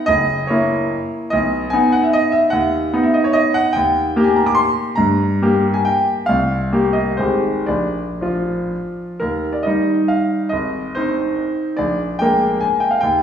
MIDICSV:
0, 0, Header, 1, 2, 480
1, 0, Start_track
1, 0, Key_signature, 5, "major"
1, 0, Tempo, 429185
1, 70, Time_signature, 3, 2, 24, 8
1, 1033, Tempo, 406229
1, 4390, Key_signature, -3, "major"
1, 5833, Tempo, 427350
1, 7273, Tempo, 451128
1, 8233, Tempo, 516796
1, 9673, Tempo, 483092
1, 10153, Tempo, 437956
1, 12553, Tempo, 408163
1, 14709, End_track
2, 0, Start_track
2, 0, Title_t, "Grand piano"
2, 0, Program_c, 0, 0
2, 68, Note_on_c, 0, 75, 84
2, 92, Note_on_c, 0, 30, 51
2, 315, Control_c, 0, 64, 127
2, 529, Note_on_c, 0, 73, 52
2, 548, Note_off_c, 0, 30, 0
2, 550, Note_off_c, 0, 75, 0
2, 562, Note_on_c, 0, 58, 48
2, 565, Note_on_c, 0, 64, 49
2, 1041, Control_c, 0, 64, 0
2, 1259, Note_off_c, 0, 73, 0
2, 1458, Note_off_c, 0, 58, 0
2, 1459, Note_off_c, 0, 64, 0
2, 1482, Note_on_c, 0, 75, 67
2, 1513, Note_on_c, 0, 35, 53
2, 1686, Control_c, 0, 64, 127
2, 1952, Note_on_c, 0, 80, 80
2, 1970, Note_off_c, 0, 75, 0
2, 1971, Note_off_c, 0, 35, 0
2, 1990, Note_on_c, 0, 59, 53
2, 1992, Note_on_c, 0, 63, 53
2, 1996, Control_c, 0, 64, 0
2, 2215, Note_on_c, 0, 78, 62
2, 2219, Note_off_c, 0, 80, 0
2, 2340, Note_on_c, 0, 76, 58
2, 2348, Note_off_c, 0, 78, 0
2, 2462, Note_on_c, 0, 75, 76
2, 2469, Note_off_c, 0, 76, 0
2, 2682, Note_on_c, 0, 76, 72
2, 2705, Note_off_c, 0, 75, 0
2, 2898, Note_off_c, 0, 59, 0
2, 2899, Note_off_c, 0, 63, 0
2, 2899, Note_on_c, 0, 78, 74
2, 2925, Note_off_c, 0, 76, 0
2, 2928, Note_on_c, 0, 39, 54
2, 3146, Control_c, 0, 64, 127
2, 3398, Note_off_c, 0, 39, 0
2, 3410, Note_on_c, 0, 59, 47
2, 3410, Note_on_c, 0, 63, 58
2, 3430, Control_c, 0, 64, 0
2, 3524, Note_on_c, 0, 76, 51
2, 3527, Note_off_c, 0, 78, 0
2, 3650, Note_on_c, 0, 75, 57
2, 3665, Note_off_c, 0, 76, 0
2, 3772, Note_on_c, 0, 73, 58
2, 3790, Note_off_c, 0, 75, 0
2, 3879, Note_on_c, 0, 75, 81
2, 3910, Note_off_c, 0, 73, 0
2, 4127, Note_on_c, 0, 78, 80
2, 4139, Note_off_c, 0, 75, 0
2, 4339, Note_off_c, 0, 59, 0
2, 4339, Note_off_c, 0, 63, 0
2, 4347, Note_on_c, 0, 79, 78
2, 4373, Note_off_c, 0, 78, 0
2, 4389, Note_on_c, 0, 39, 52
2, 4592, Control_c, 0, 64, 127
2, 4850, Note_off_c, 0, 39, 0
2, 4861, Note_on_c, 0, 58, 55
2, 4868, Note_on_c, 0, 67, 55
2, 4948, Note_on_c, 0, 80, 51
2, 4968, Note_off_c, 0, 79, 0
2, 5092, Note_off_c, 0, 80, 0
2, 5096, Note_on_c, 0, 82, 57
2, 5217, Note_on_c, 0, 86, 70
2, 5226, Note_off_c, 0, 82, 0
2, 5314, Note_on_c, 0, 84, 87
2, 5346, Note_off_c, 0, 86, 0
2, 5369, Control_c, 0, 64, 0
2, 5786, Note_off_c, 0, 58, 0
2, 5789, Note_off_c, 0, 67, 0
2, 5797, Note_on_c, 0, 82, 68
2, 5814, Note_off_c, 0, 84, 0
2, 5821, Note_on_c, 0, 43, 58
2, 6070, Control_c, 0, 64, 127
2, 6295, Note_off_c, 0, 43, 0
2, 6326, Note_on_c, 0, 58, 49
2, 6328, Note_on_c, 0, 67, 55
2, 6668, Note_off_c, 0, 82, 0
2, 6676, Note_on_c, 0, 80, 56
2, 6802, Note_off_c, 0, 80, 0
2, 6803, Note_on_c, 0, 79, 69
2, 6820, Control_c, 0, 64, 0
2, 7042, Note_off_c, 0, 79, 0
2, 7234, Note_off_c, 0, 58, 0
2, 7235, Note_off_c, 0, 67, 0
2, 7265, Note_on_c, 0, 77, 74
2, 7292, Note_on_c, 0, 36, 52
2, 7448, Control_c, 0, 64, 127
2, 7733, Note_off_c, 0, 36, 0
2, 7759, Note_on_c, 0, 58, 43
2, 7768, Note_on_c, 0, 67, 44
2, 7976, Note_on_c, 0, 75, 54
2, 7979, Note_off_c, 0, 77, 0
2, 8202, Note_off_c, 0, 58, 0
2, 8207, Note_off_c, 0, 67, 0
2, 8230, Note_off_c, 0, 75, 0
2, 8233, Note_on_c, 0, 72, 52
2, 8246, Control_c, 0, 64, 0
2, 8249, Note_on_c, 0, 56, 35
2, 8250, Note_on_c, 0, 32, 49
2, 8251, Note_on_c, 0, 51, 33
2, 8261, Note_on_c, 0, 67, 35
2, 8450, Control_c, 0, 64, 127
2, 8674, Note_off_c, 0, 56, 0
2, 8675, Note_off_c, 0, 51, 0
2, 8680, Note_off_c, 0, 67, 0
2, 8692, Note_on_c, 0, 74, 50
2, 8698, Note_off_c, 0, 32, 0
2, 8703, Note_off_c, 0, 72, 0
2, 8711, Note_on_c, 0, 34, 42
2, 8719, Control_c, 0, 64, 0
2, 8929, Control_c, 0, 64, 127
2, 9180, Note_off_c, 0, 34, 0
2, 9201, Note_on_c, 0, 53, 34
2, 9211, Note_on_c, 0, 65, 40
2, 9683, Control_c, 0, 64, 0
2, 9918, Note_off_c, 0, 74, 0
2, 10120, Note_off_c, 0, 53, 0
2, 10125, Note_off_c, 0, 65, 0
2, 10146, Note_on_c, 0, 70, 52
2, 10165, Note_on_c, 0, 39, 39
2, 10377, Control_c, 0, 64, 127
2, 10505, Note_on_c, 0, 74, 41
2, 10508, Note_off_c, 0, 70, 0
2, 10618, Note_on_c, 0, 75, 55
2, 10629, Note_off_c, 0, 39, 0
2, 10634, Note_off_c, 0, 74, 0
2, 10650, Control_c, 0, 64, 0
2, 10652, Note_on_c, 0, 51, 39
2, 10660, Note_on_c, 0, 55, 38
2, 10664, Note_on_c, 0, 63, 43
2, 11117, Note_on_c, 0, 77, 59
2, 11125, Note_off_c, 0, 75, 0
2, 11564, Note_off_c, 0, 51, 0
2, 11566, Note_on_c, 0, 75, 58
2, 11568, Note_off_c, 0, 55, 0
2, 11570, Note_off_c, 0, 63, 0
2, 11592, Note_off_c, 0, 77, 0
2, 11602, Note_on_c, 0, 32, 41
2, 11789, Control_c, 0, 64, 127
2, 12058, Note_off_c, 0, 75, 0
2, 12062, Note_off_c, 0, 32, 0
2, 12065, Note_on_c, 0, 72, 62
2, 12087, Note_on_c, 0, 60, 37
2, 12088, Note_on_c, 0, 51, 36
2, 12090, Note_on_c, 0, 63, 41
2, 12561, Control_c, 0, 64, 0
2, 12982, Note_off_c, 0, 60, 0
2, 12983, Note_off_c, 0, 51, 0
2, 12984, Note_off_c, 0, 63, 0
2, 12991, Note_on_c, 0, 74, 60
2, 13016, Note_on_c, 0, 34, 44
2, 13018, Note_off_c, 0, 72, 0
2, 13205, Control_c, 0, 64, 127
2, 13488, Note_on_c, 0, 79, 70
2, 13491, Note_off_c, 0, 34, 0
2, 13493, Note_off_c, 0, 74, 0
2, 13515, Note_on_c, 0, 56, 42
2, 13521, Note_on_c, 0, 58, 41
2, 13523, Note_on_c, 0, 70, 45
2, 13978, Note_on_c, 0, 80, 60
2, 13992, Note_off_c, 0, 79, 0
2, 14014, Control_c, 0, 64, 0
2, 14210, Note_on_c, 0, 79, 54
2, 14230, Note_off_c, 0, 80, 0
2, 14333, Note_on_c, 0, 77, 46
2, 14344, Note_off_c, 0, 79, 0
2, 14432, Note_off_c, 0, 56, 0
2, 14435, Note_off_c, 0, 58, 0
2, 14436, Note_off_c, 0, 70, 0
2, 14451, Note_on_c, 0, 79, 69
2, 14463, Note_off_c, 0, 77, 0
2, 14479, Note_on_c, 0, 39, 47
2, 14660, Control_c, 0, 64, 127
2, 14709, Note_off_c, 0, 39, 0
2, 14709, Note_off_c, 0, 79, 0
2, 14709, End_track
0, 0, End_of_file